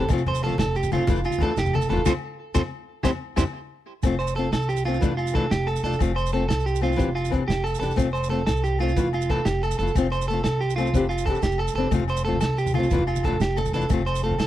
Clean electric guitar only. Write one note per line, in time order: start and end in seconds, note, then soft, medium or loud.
0.28 0.43 C5 medium
0.44 0.58 A4 medium
0.59 0.75 A4 medium
0.76 0.92 G4 medium
0.93 1.24 F4 medium
1.26 1.41 F4 medium
1.43 1.58 A4 medium
1.59 1.74 G4 medium
1.75 1.89 A4 medium
1.90 2.05 A4 medium
2.06 2.12 F4 medium
2.06 2.12 A4 medium
2.06 2.12 C5 medium
2.55 2.61 F4 medium
2.55 2.61 A4 medium
2.55 2.61 C5 medium
3.03 3.09 E4 medium
3.03 3.10 G4 medium
3.03 3.10 C5 medium
3.37 3.43 E4 medium
3.37 3.43 G4 medium
3.37 3.43 C5 medium
4.19 4.35 C5 medium
4.36 4.52 A4 medium
4.53 4.68 A4 medium
4.69 4.85 G4 medium
4.85 5.16 F4 medium
5.17 5.33 F4 medium
5.35 5.51 A4 medium
5.51 5.67 G4 medium
5.67 5.83 A4 medium
5.84 6.00 A4 medium
6.16 6.32 C5 medium
6.33 6.48 A4 medium
6.49 6.65 A4 medium
6.66 6.82 G4 medium
6.83 7.14 F4 medium
7.15 7.31 F4 medium
7.48 7.64 G4 medium
7.64 7.78 A4 medium
7.80 7.96 A4 medium
8.13 8.29 C5 medium
8.30 8.45 A4 medium
8.47 8.62 A4 medium
8.64 8.79 G4 medium
8.80 9.12 F4 medium
9.14 9.29 F4 medium
9.31 9.46 A4 medium
9.45 9.61 G4 medium
9.63 9.78 A4 medium
9.79 9.94 A4 medium
10.12 10.27 C5 medium
10.28 10.43 A4 medium
10.44 10.60 A4 medium
10.61 10.76 G4 medium
10.76 11.08 F4 medium
11.09 11.25 F4 medium
11.26 11.42 A4 medium
11.43 11.59 G4 medium
11.59 11.74 A4 medium
11.76 11.91 A4 medium
12.10 12.24 C5 medium
12.25 12.40 A4 medium
12.41 12.57 A4 medium
12.58 12.74 G4 medium
12.75 13.06 F4 medium
13.08 13.23 F4 medium
13.25 13.40 A4 medium
13.41 13.57 G4 medium
13.57 13.73 A4 medium
13.74 13.90 A4 medium
14.06 14.22 C5 medium
14.24 14.39 A4 medium
14.40 14.47 A4 medium